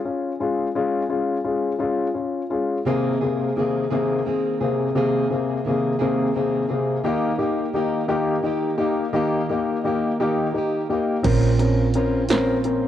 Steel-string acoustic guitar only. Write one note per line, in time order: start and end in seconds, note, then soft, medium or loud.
2.85 3.21 C3 medium
2.85 3.22 D#3 medium
2.85 3.22 A#3 medium
2.85 3.22 C4 medium
2.85 3.20 G#4 medium
3.21 3.55 A#3 soft
3.21 3.57 C4 soft
3.21 3.56 G#4 soft
3.56 3.91 D#3 soft
3.56 3.91 A#3 soft
3.56 3.90 C4 medium
3.56 3.89 G#4 medium
3.90 4.27 C3 soft
3.90 4.24 D#3 soft
3.90 4.25 A#3 medium
3.90 4.26 C4 medium
3.90 4.26 G#4 medium
4.25 4.61 D#3 soft
4.25 4.61 A#3 soft
4.25 4.62 C4 medium
4.25 4.59 G#4 medium
4.61 4.95 A#3 soft
4.61 4.96 C4 soft
4.61 4.96 G#4 soft
4.95 5.31 C3 medium
4.95 5.31 D#3 medium
4.95 5.31 A#3 medium
4.95 5.31 C4 medium
4.95 5.29 G#4 medium
5.30 5.65 A#3 soft
5.30 5.66 C4 soft
5.30 5.65 G#4 soft
5.65 6.00 D#3 soft
5.65 5.99 A#3 soft
5.65 5.98 C4 medium
5.65 5.98 G#4 medium
5.99 6.35 C3 soft
5.99 6.32 D#3 medium
5.99 6.33 A#3 medium
5.99 6.34 C4 medium
5.99 6.34 G#4 medium
6.33 6.69 D#3 soft
6.33 6.70 A#3 soft
6.33 6.69 C4 medium
6.33 6.67 G#4 medium
6.69 7.03 A#3 soft
6.69 7.05 C4 soft
6.69 7.04 G#4 soft
7.04 7.39 D#3 medium
7.04 7.39 A#3 medium
7.04 7.39 D#4 medium
7.04 7.38 G4 medium
7.39 7.74 A#3 soft
7.39 7.75 D#4 soft
7.39 7.74 G4 soft
7.74 8.09 D#3 soft
7.74 8.09 A#3 medium
7.74 8.08 D#4 medium
7.74 8.07 G4 medium
8.09 8.42 D#3 soft
8.09 8.43 A#3 soft
8.09 8.44 D#4 medium
8.09 8.44 G4 medium
8.43 8.79 D#3 medium
8.43 8.79 A#3 medium
8.43 8.79 D#4 soft
8.43 8.77 G4 medium
8.78 9.13 A#3 soft
8.78 9.14 D#4 soft
8.78 9.14 G4 soft
9.13 9.49 D#3 medium
9.13 9.49 A#3 medium
9.13 9.50 D#4 medium
9.13 9.48 G4 medium
9.49 9.84 A#3 soft
9.49 9.85 D#4 soft
9.49 9.84 G4 soft
9.84 10.19 D#3 soft
9.84 10.20 A#3 medium
9.84 10.20 D#4 medium
9.84 10.19 G4 medium
10.20 10.54 D#3 soft
10.20 10.55 A#3 soft
10.20 10.55 D#4 medium
10.20 10.55 G4 soft
10.55 10.90 D#3 medium
10.55 10.90 A#3 soft
10.55 10.90 D#4 medium
10.55 10.89 G4 medium
10.90 11.26 A#3 soft
10.90 11.26 D#4 soft
10.90 11.25 G4 soft
11.25 11.95 A#2 medium
11.25 11.94 F3 medium
11.25 11.97 C4 medium
11.25 11.95 C#4 medium
11.25 11.97 F4 medium
11.95 12.29 F3 soft
11.95 12.28 C4 medium
11.95 12.29 C#4 medium
11.95 12.27 F4 medium
12.29 12.88 A#2 medium
12.29 12.88 F3 medium
12.29 12.88 C4 medium
12.29 12.88 C#4 medium
12.29 12.88 F4 medium